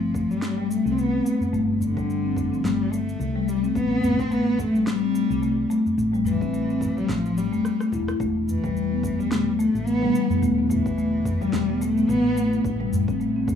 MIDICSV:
0, 0, Header, 1, 7, 480
1, 0, Start_track
1, 0, Key_signature, 0, "minor"
1, 0, Tempo, 555556
1, 1326, Time_signature, 4, 2, 24, 8
1, 11709, End_track
2, 0, Start_track
2, 0, Title_t, "Marimba"
2, 0, Program_c, 0, 12
2, 124, Note_on_c, 0, 57, 83
2, 488, Note_off_c, 0, 57, 0
2, 501, Note_on_c, 0, 55, 83
2, 600, Note_off_c, 0, 55, 0
2, 741, Note_on_c, 0, 60, 65
2, 840, Note_off_c, 0, 60, 0
2, 840, Note_on_c, 0, 57, 77
2, 966, Note_off_c, 0, 57, 0
2, 977, Note_on_c, 0, 60, 67
2, 1073, Note_off_c, 0, 60, 0
2, 1082, Note_on_c, 0, 57, 70
2, 1214, Note_off_c, 0, 57, 0
2, 1323, Note_on_c, 0, 57, 93
2, 1688, Note_off_c, 0, 57, 0
2, 1702, Note_on_c, 0, 55, 89
2, 1800, Note_off_c, 0, 55, 0
2, 1938, Note_on_c, 0, 60, 69
2, 2039, Note_off_c, 0, 60, 0
2, 2042, Note_on_c, 0, 57, 64
2, 2167, Note_off_c, 0, 57, 0
2, 2179, Note_on_c, 0, 60, 65
2, 2274, Note_off_c, 0, 60, 0
2, 2283, Note_on_c, 0, 57, 73
2, 2415, Note_off_c, 0, 57, 0
2, 2519, Note_on_c, 0, 57, 92
2, 2886, Note_off_c, 0, 57, 0
2, 2898, Note_on_c, 0, 55, 91
2, 2999, Note_off_c, 0, 55, 0
2, 3138, Note_on_c, 0, 60, 68
2, 3239, Note_off_c, 0, 60, 0
2, 3242, Note_on_c, 0, 57, 74
2, 3367, Note_off_c, 0, 57, 0
2, 3379, Note_on_c, 0, 60, 67
2, 3474, Note_off_c, 0, 60, 0
2, 3480, Note_on_c, 0, 57, 68
2, 3613, Note_off_c, 0, 57, 0
2, 3720, Note_on_c, 0, 57, 87
2, 4087, Note_off_c, 0, 57, 0
2, 4099, Note_on_c, 0, 55, 81
2, 4199, Note_off_c, 0, 55, 0
2, 4341, Note_on_c, 0, 60, 64
2, 4440, Note_off_c, 0, 60, 0
2, 4448, Note_on_c, 0, 57, 69
2, 4570, Note_off_c, 0, 57, 0
2, 4582, Note_on_c, 0, 60, 62
2, 4675, Note_off_c, 0, 60, 0
2, 4686, Note_on_c, 0, 57, 77
2, 4816, Note_off_c, 0, 57, 0
2, 4927, Note_on_c, 0, 57, 97
2, 5290, Note_off_c, 0, 57, 0
2, 5300, Note_on_c, 0, 55, 88
2, 5400, Note_off_c, 0, 55, 0
2, 5540, Note_on_c, 0, 60, 69
2, 5640, Note_off_c, 0, 60, 0
2, 5646, Note_on_c, 0, 57, 74
2, 5769, Note_off_c, 0, 57, 0
2, 5783, Note_on_c, 0, 60, 71
2, 5876, Note_off_c, 0, 60, 0
2, 5890, Note_on_c, 0, 57, 68
2, 6018, Note_off_c, 0, 57, 0
2, 6128, Note_on_c, 0, 57, 85
2, 6250, Note_off_c, 0, 57, 0
2, 6503, Note_on_c, 0, 57, 82
2, 6601, Note_off_c, 0, 57, 0
2, 6744, Note_on_c, 0, 57, 87
2, 6803, Note_off_c, 0, 57, 0
2, 6848, Note_on_c, 0, 64, 91
2, 6977, Note_off_c, 0, 64, 0
2, 6988, Note_on_c, 0, 64, 89
2, 7084, Note_off_c, 0, 64, 0
2, 7089, Note_on_c, 0, 57, 91
2, 7451, Note_off_c, 0, 57, 0
2, 7467, Note_on_c, 0, 55, 95
2, 7563, Note_off_c, 0, 55, 0
2, 7705, Note_on_c, 0, 59, 67
2, 7802, Note_off_c, 0, 59, 0
2, 7808, Note_on_c, 0, 57, 64
2, 7930, Note_off_c, 0, 57, 0
2, 7944, Note_on_c, 0, 59, 63
2, 8036, Note_off_c, 0, 59, 0
2, 8047, Note_on_c, 0, 57, 74
2, 8177, Note_off_c, 0, 57, 0
2, 8286, Note_on_c, 0, 57, 93
2, 8649, Note_off_c, 0, 57, 0
2, 8662, Note_on_c, 0, 55, 91
2, 8760, Note_off_c, 0, 55, 0
2, 8905, Note_on_c, 0, 59, 69
2, 9002, Note_off_c, 0, 59, 0
2, 9007, Note_on_c, 0, 57, 79
2, 9130, Note_off_c, 0, 57, 0
2, 9146, Note_on_c, 0, 59, 71
2, 9237, Note_off_c, 0, 59, 0
2, 9247, Note_on_c, 0, 57, 68
2, 9377, Note_off_c, 0, 57, 0
2, 9487, Note_on_c, 0, 57, 91
2, 9850, Note_off_c, 0, 57, 0
2, 9863, Note_on_c, 0, 55, 91
2, 9961, Note_off_c, 0, 55, 0
2, 10102, Note_on_c, 0, 59, 71
2, 10201, Note_off_c, 0, 59, 0
2, 10206, Note_on_c, 0, 57, 75
2, 10329, Note_off_c, 0, 57, 0
2, 10343, Note_on_c, 0, 59, 66
2, 10436, Note_off_c, 0, 59, 0
2, 10442, Note_on_c, 0, 57, 75
2, 10574, Note_off_c, 0, 57, 0
2, 10684, Note_on_c, 0, 57, 96
2, 10925, Note_off_c, 0, 57, 0
2, 11061, Note_on_c, 0, 55, 85
2, 11160, Note_off_c, 0, 55, 0
2, 11300, Note_on_c, 0, 60, 69
2, 11400, Note_off_c, 0, 60, 0
2, 11404, Note_on_c, 0, 57, 82
2, 11529, Note_off_c, 0, 57, 0
2, 11543, Note_on_c, 0, 60, 66
2, 11636, Note_off_c, 0, 60, 0
2, 11643, Note_on_c, 0, 57, 68
2, 11709, Note_off_c, 0, 57, 0
2, 11709, End_track
3, 0, Start_track
3, 0, Title_t, "Cello"
3, 0, Program_c, 1, 42
3, 0, Note_on_c, 1, 53, 82
3, 261, Note_on_c, 1, 55, 88
3, 274, Note_off_c, 1, 53, 0
3, 607, Note_on_c, 1, 57, 89
3, 620, Note_off_c, 1, 55, 0
3, 797, Note_on_c, 1, 60, 68
3, 810, Note_off_c, 1, 57, 0
3, 848, Note_on_c, 1, 59, 91
3, 861, Note_off_c, 1, 60, 0
3, 1224, Note_off_c, 1, 59, 0
3, 1571, Note_on_c, 1, 50, 84
3, 2185, Note_on_c, 1, 53, 80
3, 2198, Note_off_c, 1, 50, 0
3, 2285, Note_on_c, 1, 55, 93
3, 2298, Note_off_c, 1, 53, 0
3, 2528, Note_on_c, 1, 57, 93
3, 2541, Note_off_c, 1, 55, 0
3, 3010, Note_on_c, 1, 55, 90
3, 3023, Note_off_c, 1, 57, 0
3, 3147, Note_on_c, 1, 57, 87
3, 3160, Note_off_c, 1, 55, 0
3, 3248, Note_on_c, 1, 59, 104
3, 3261, Note_off_c, 1, 57, 0
3, 3626, Note_on_c, 1, 60, 93
3, 3639, Note_off_c, 1, 59, 0
3, 3728, Note_on_c, 1, 59, 99
3, 3741, Note_off_c, 1, 60, 0
3, 3964, Note_on_c, 1, 57, 95
3, 3977, Note_off_c, 1, 59, 0
3, 4202, Note_on_c, 1, 55, 93
3, 4215, Note_off_c, 1, 57, 0
3, 4924, Note_off_c, 1, 55, 0
3, 5402, Note_on_c, 1, 52, 87
3, 6023, Note_on_c, 1, 55, 92
3, 6035, Note_off_c, 1, 52, 0
3, 6125, Note_on_c, 1, 53, 101
3, 6138, Note_off_c, 1, 55, 0
3, 6373, Note_on_c, 1, 55, 89
3, 6386, Note_off_c, 1, 53, 0
3, 6850, Note_off_c, 1, 55, 0
3, 7336, Note_on_c, 1, 52, 87
3, 7945, Note_on_c, 1, 55, 87
3, 7958, Note_off_c, 1, 52, 0
3, 8280, Note_off_c, 1, 55, 0
3, 8285, Note_on_c, 1, 57, 91
3, 8524, Note_on_c, 1, 59, 101
3, 8537, Note_off_c, 1, 57, 0
3, 8902, Note_off_c, 1, 59, 0
3, 9244, Note_on_c, 1, 52, 84
3, 9861, Note_on_c, 1, 55, 90
3, 9874, Note_off_c, 1, 52, 0
3, 10206, Note_on_c, 1, 57, 91
3, 10219, Note_off_c, 1, 55, 0
3, 10445, Note_on_c, 1, 59, 102
3, 10458, Note_off_c, 1, 57, 0
3, 10823, Note_off_c, 1, 59, 0
3, 11709, End_track
4, 0, Start_track
4, 0, Title_t, "Ambient pad"
4, 0, Program_c, 2, 92
4, 7089, Note_on_c, 2, 52, 75
4, 7089, Note_on_c, 2, 59, 78
4, 7090, Note_on_c, 2, 64, 87
4, 7091, Note_on_c, 2, 50, 83
4, 7095, Note_on_c, 2, 57, 73
4, 10893, Note_off_c, 2, 52, 0
4, 10893, Note_off_c, 2, 59, 0
4, 10894, Note_off_c, 2, 50, 0
4, 10924, Note_on_c, 2, 55, 78
4, 10925, Note_on_c, 2, 48, 81
4, 10925, Note_on_c, 2, 52, 77
4, 11709, Note_off_c, 2, 48, 0
4, 11709, Note_off_c, 2, 52, 0
4, 11709, Note_off_c, 2, 55, 0
4, 11709, Note_off_c, 2, 57, 0
4, 11709, Note_off_c, 2, 64, 0
4, 11709, End_track
5, 0, Start_track
5, 0, Title_t, "Fretless electric bass"
5, 0, Program_c, 3, 35
5, 0, Note_on_c, 3, 31, 83
5, 674, Note_off_c, 3, 31, 0
5, 738, Note_on_c, 3, 36, 74
5, 1032, Note_off_c, 3, 36, 0
5, 1322, Note_on_c, 3, 31, 89
5, 2232, Note_off_c, 3, 31, 0
5, 2281, Note_on_c, 3, 31, 70
5, 2712, Note_off_c, 3, 31, 0
5, 2761, Note_on_c, 3, 36, 85
5, 3192, Note_off_c, 3, 36, 0
5, 3243, Note_on_c, 3, 33, 86
5, 4513, Note_off_c, 3, 33, 0
5, 4580, Note_on_c, 3, 36, 76
5, 4873, Note_off_c, 3, 36, 0
5, 5165, Note_on_c, 3, 33, 88
5, 6074, Note_off_c, 3, 33, 0
5, 6124, Note_on_c, 3, 33, 74
5, 6553, Note_off_c, 3, 33, 0
5, 6845, Note_on_c, 3, 28, 92
5, 7021, Note_off_c, 3, 28, 0
5, 7084, Note_on_c, 3, 28, 89
5, 8353, Note_off_c, 3, 28, 0
5, 8420, Note_on_c, 3, 33, 69
5, 8713, Note_off_c, 3, 33, 0
5, 9004, Note_on_c, 3, 28, 89
5, 9913, Note_off_c, 3, 28, 0
5, 9963, Note_on_c, 3, 28, 69
5, 10393, Note_off_c, 3, 28, 0
5, 10443, Note_on_c, 3, 33, 83
5, 10873, Note_off_c, 3, 33, 0
5, 10924, Note_on_c, 3, 33, 91
5, 11709, Note_off_c, 3, 33, 0
5, 11709, End_track
6, 0, Start_track
6, 0, Title_t, "Udu"
6, 128, Note_on_c, 9, 64, 79
6, 214, Note_off_c, 9, 64, 0
6, 1215, Note_on_c, 9, 64, 85
6, 1301, Note_off_c, 9, 64, 0
6, 1558, Note_on_c, 9, 64, 74
6, 1645, Note_off_c, 9, 64, 0
6, 2042, Note_on_c, 9, 64, 86
6, 2128, Note_off_c, 9, 64, 0
6, 3481, Note_on_c, 9, 64, 84
6, 3567, Note_off_c, 9, 64, 0
6, 3964, Note_on_c, 9, 64, 84
6, 4050, Note_off_c, 9, 64, 0
6, 5064, Note_on_c, 9, 64, 80
6, 5151, Note_off_c, 9, 64, 0
6, 5396, Note_on_c, 9, 64, 84
6, 5483, Note_off_c, 9, 64, 0
6, 5893, Note_on_c, 9, 64, 72
6, 5980, Note_off_c, 9, 64, 0
6, 7328, Note_on_c, 9, 64, 76
6, 7414, Note_off_c, 9, 64, 0
6, 7805, Note_on_c, 9, 64, 84
6, 7891, Note_off_c, 9, 64, 0
6, 8898, Note_on_c, 9, 64, 78
6, 8984, Note_off_c, 9, 64, 0
6, 9240, Note_on_c, 9, 64, 96
6, 9327, Note_off_c, 9, 64, 0
6, 9720, Note_on_c, 9, 64, 95
6, 9807, Note_off_c, 9, 64, 0
6, 11169, Note_on_c, 9, 64, 91
6, 11256, Note_off_c, 9, 64, 0
6, 11643, Note_on_c, 9, 64, 86
6, 11709, Note_off_c, 9, 64, 0
6, 11709, End_track
7, 0, Start_track
7, 0, Title_t, "Drums"
7, 126, Note_on_c, 9, 36, 91
7, 132, Note_on_c, 9, 69, 67
7, 212, Note_off_c, 9, 36, 0
7, 218, Note_off_c, 9, 69, 0
7, 268, Note_on_c, 9, 69, 30
7, 354, Note_off_c, 9, 69, 0
7, 365, Note_on_c, 9, 38, 60
7, 370, Note_on_c, 9, 69, 38
7, 451, Note_off_c, 9, 38, 0
7, 456, Note_off_c, 9, 69, 0
7, 612, Note_on_c, 9, 69, 69
7, 698, Note_off_c, 9, 69, 0
7, 748, Note_on_c, 9, 69, 29
7, 834, Note_off_c, 9, 69, 0
7, 850, Note_on_c, 9, 69, 39
7, 936, Note_off_c, 9, 69, 0
7, 1089, Note_on_c, 9, 69, 69
7, 1175, Note_off_c, 9, 69, 0
7, 1226, Note_on_c, 9, 69, 29
7, 1313, Note_off_c, 9, 69, 0
7, 1330, Note_on_c, 9, 69, 37
7, 1416, Note_off_c, 9, 69, 0
7, 1570, Note_on_c, 9, 69, 67
7, 1656, Note_off_c, 9, 69, 0
7, 1701, Note_on_c, 9, 36, 93
7, 1711, Note_on_c, 9, 69, 27
7, 1788, Note_off_c, 9, 36, 0
7, 1798, Note_off_c, 9, 69, 0
7, 1814, Note_on_c, 9, 69, 37
7, 1901, Note_off_c, 9, 69, 0
7, 2044, Note_on_c, 9, 36, 89
7, 2052, Note_on_c, 9, 69, 66
7, 2130, Note_off_c, 9, 36, 0
7, 2139, Note_off_c, 9, 69, 0
7, 2191, Note_on_c, 9, 69, 28
7, 2278, Note_off_c, 9, 69, 0
7, 2289, Note_on_c, 9, 38, 67
7, 2294, Note_on_c, 9, 69, 39
7, 2376, Note_off_c, 9, 38, 0
7, 2380, Note_off_c, 9, 69, 0
7, 2533, Note_on_c, 9, 69, 70
7, 2619, Note_off_c, 9, 69, 0
7, 2669, Note_on_c, 9, 69, 30
7, 2756, Note_off_c, 9, 69, 0
7, 2770, Note_on_c, 9, 69, 36
7, 2857, Note_off_c, 9, 69, 0
7, 3010, Note_on_c, 9, 69, 66
7, 3096, Note_off_c, 9, 69, 0
7, 3147, Note_on_c, 9, 69, 26
7, 3233, Note_off_c, 9, 69, 0
7, 3244, Note_on_c, 9, 36, 104
7, 3249, Note_on_c, 9, 69, 40
7, 3330, Note_off_c, 9, 36, 0
7, 3335, Note_off_c, 9, 69, 0
7, 3488, Note_on_c, 9, 69, 62
7, 3574, Note_off_c, 9, 69, 0
7, 3620, Note_on_c, 9, 36, 91
7, 3626, Note_on_c, 9, 69, 27
7, 3707, Note_off_c, 9, 36, 0
7, 3712, Note_off_c, 9, 69, 0
7, 3728, Note_on_c, 9, 69, 38
7, 3815, Note_off_c, 9, 69, 0
7, 3963, Note_on_c, 9, 36, 86
7, 3969, Note_on_c, 9, 69, 71
7, 4050, Note_off_c, 9, 36, 0
7, 4056, Note_off_c, 9, 69, 0
7, 4107, Note_on_c, 9, 69, 28
7, 4194, Note_off_c, 9, 69, 0
7, 4207, Note_on_c, 9, 38, 65
7, 4212, Note_on_c, 9, 69, 36
7, 4293, Note_off_c, 9, 38, 0
7, 4298, Note_off_c, 9, 69, 0
7, 4450, Note_on_c, 9, 69, 70
7, 4537, Note_off_c, 9, 69, 0
7, 4587, Note_on_c, 9, 69, 29
7, 4674, Note_off_c, 9, 69, 0
7, 4689, Note_on_c, 9, 69, 39
7, 4776, Note_off_c, 9, 69, 0
7, 4931, Note_on_c, 9, 69, 68
7, 5017, Note_off_c, 9, 69, 0
7, 5067, Note_on_c, 9, 69, 27
7, 5154, Note_off_c, 9, 69, 0
7, 5170, Note_on_c, 9, 69, 42
7, 5257, Note_off_c, 9, 69, 0
7, 5308, Note_on_c, 9, 69, 26
7, 5394, Note_off_c, 9, 69, 0
7, 5411, Note_on_c, 9, 69, 63
7, 5497, Note_off_c, 9, 69, 0
7, 5541, Note_on_c, 9, 36, 86
7, 5547, Note_on_c, 9, 69, 28
7, 5627, Note_off_c, 9, 36, 0
7, 5634, Note_off_c, 9, 69, 0
7, 5650, Note_on_c, 9, 69, 40
7, 5737, Note_off_c, 9, 69, 0
7, 5788, Note_on_c, 9, 69, 25
7, 5875, Note_off_c, 9, 69, 0
7, 5884, Note_on_c, 9, 36, 89
7, 5892, Note_on_c, 9, 69, 65
7, 5970, Note_off_c, 9, 36, 0
7, 5978, Note_off_c, 9, 69, 0
7, 6028, Note_on_c, 9, 69, 29
7, 6114, Note_off_c, 9, 69, 0
7, 6125, Note_on_c, 9, 36, 55
7, 6129, Note_on_c, 9, 38, 70
7, 6133, Note_on_c, 9, 69, 36
7, 6211, Note_off_c, 9, 36, 0
7, 6215, Note_off_c, 9, 38, 0
7, 6220, Note_off_c, 9, 69, 0
7, 6270, Note_on_c, 9, 69, 25
7, 6356, Note_off_c, 9, 69, 0
7, 6372, Note_on_c, 9, 69, 66
7, 6458, Note_off_c, 9, 69, 0
7, 6507, Note_on_c, 9, 69, 30
7, 6593, Note_off_c, 9, 69, 0
7, 6609, Note_on_c, 9, 37, 58
7, 6613, Note_on_c, 9, 69, 40
7, 6695, Note_off_c, 9, 37, 0
7, 6700, Note_off_c, 9, 69, 0
7, 6743, Note_on_c, 9, 37, 56
7, 6748, Note_on_c, 9, 69, 26
7, 6829, Note_off_c, 9, 37, 0
7, 6834, Note_off_c, 9, 69, 0
7, 6845, Note_on_c, 9, 36, 51
7, 6852, Note_on_c, 9, 69, 63
7, 6931, Note_off_c, 9, 36, 0
7, 6938, Note_off_c, 9, 69, 0
7, 6984, Note_on_c, 9, 37, 70
7, 6989, Note_on_c, 9, 69, 28
7, 7070, Note_off_c, 9, 37, 0
7, 7075, Note_off_c, 9, 69, 0
7, 7085, Note_on_c, 9, 36, 110
7, 7093, Note_on_c, 9, 69, 41
7, 7172, Note_off_c, 9, 36, 0
7, 7179, Note_off_c, 9, 69, 0
7, 7332, Note_on_c, 9, 69, 70
7, 7419, Note_off_c, 9, 69, 0
7, 7462, Note_on_c, 9, 36, 91
7, 7465, Note_on_c, 9, 45, 67
7, 7469, Note_on_c, 9, 69, 29
7, 7549, Note_off_c, 9, 36, 0
7, 7551, Note_off_c, 9, 45, 0
7, 7556, Note_off_c, 9, 69, 0
7, 7574, Note_on_c, 9, 69, 36
7, 7660, Note_off_c, 9, 69, 0
7, 7806, Note_on_c, 9, 36, 92
7, 7812, Note_on_c, 9, 69, 72
7, 7892, Note_off_c, 9, 36, 0
7, 7899, Note_off_c, 9, 69, 0
7, 7951, Note_on_c, 9, 69, 28
7, 8037, Note_off_c, 9, 69, 0
7, 8049, Note_on_c, 9, 38, 72
7, 8049, Note_on_c, 9, 45, 70
7, 8054, Note_on_c, 9, 69, 38
7, 8135, Note_off_c, 9, 38, 0
7, 8135, Note_off_c, 9, 45, 0
7, 8140, Note_off_c, 9, 69, 0
7, 8292, Note_on_c, 9, 69, 73
7, 8379, Note_off_c, 9, 69, 0
7, 8428, Note_on_c, 9, 69, 30
7, 8514, Note_off_c, 9, 69, 0
7, 8529, Note_on_c, 9, 69, 40
7, 8616, Note_off_c, 9, 69, 0
7, 8660, Note_on_c, 9, 45, 70
7, 8747, Note_off_c, 9, 45, 0
7, 8770, Note_on_c, 9, 69, 70
7, 8857, Note_off_c, 9, 69, 0
7, 8908, Note_on_c, 9, 69, 30
7, 8994, Note_off_c, 9, 69, 0
7, 9009, Note_on_c, 9, 69, 46
7, 9095, Note_off_c, 9, 69, 0
7, 9245, Note_on_c, 9, 45, 68
7, 9250, Note_on_c, 9, 69, 72
7, 9331, Note_off_c, 9, 45, 0
7, 9336, Note_off_c, 9, 69, 0
7, 9382, Note_on_c, 9, 36, 105
7, 9385, Note_on_c, 9, 69, 33
7, 9468, Note_off_c, 9, 36, 0
7, 9471, Note_off_c, 9, 69, 0
7, 9490, Note_on_c, 9, 69, 41
7, 9576, Note_off_c, 9, 69, 0
7, 9724, Note_on_c, 9, 36, 101
7, 9728, Note_on_c, 9, 69, 71
7, 9811, Note_off_c, 9, 36, 0
7, 9815, Note_off_c, 9, 69, 0
7, 9861, Note_on_c, 9, 45, 67
7, 9865, Note_on_c, 9, 69, 30
7, 9947, Note_off_c, 9, 45, 0
7, 9952, Note_off_c, 9, 69, 0
7, 9963, Note_on_c, 9, 38, 70
7, 9968, Note_on_c, 9, 69, 40
7, 10050, Note_off_c, 9, 38, 0
7, 10054, Note_off_c, 9, 69, 0
7, 10209, Note_on_c, 9, 69, 74
7, 10295, Note_off_c, 9, 69, 0
7, 10347, Note_on_c, 9, 69, 32
7, 10434, Note_off_c, 9, 69, 0
7, 10445, Note_on_c, 9, 45, 70
7, 10450, Note_on_c, 9, 69, 43
7, 10531, Note_off_c, 9, 45, 0
7, 10536, Note_off_c, 9, 69, 0
7, 10690, Note_on_c, 9, 69, 72
7, 10776, Note_off_c, 9, 69, 0
7, 10826, Note_on_c, 9, 69, 30
7, 10913, Note_off_c, 9, 69, 0
7, 10925, Note_on_c, 9, 36, 119
7, 10931, Note_on_c, 9, 69, 43
7, 11011, Note_off_c, 9, 36, 0
7, 11018, Note_off_c, 9, 69, 0
7, 11064, Note_on_c, 9, 45, 67
7, 11150, Note_off_c, 9, 45, 0
7, 11171, Note_on_c, 9, 69, 73
7, 11257, Note_off_c, 9, 69, 0
7, 11302, Note_on_c, 9, 36, 102
7, 11309, Note_on_c, 9, 69, 32
7, 11389, Note_off_c, 9, 36, 0
7, 11395, Note_off_c, 9, 69, 0
7, 11411, Note_on_c, 9, 69, 41
7, 11497, Note_off_c, 9, 69, 0
7, 11646, Note_on_c, 9, 36, 99
7, 11646, Note_on_c, 9, 45, 72
7, 11650, Note_on_c, 9, 69, 77
7, 11709, Note_off_c, 9, 36, 0
7, 11709, Note_off_c, 9, 45, 0
7, 11709, Note_off_c, 9, 69, 0
7, 11709, End_track
0, 0, End_of_file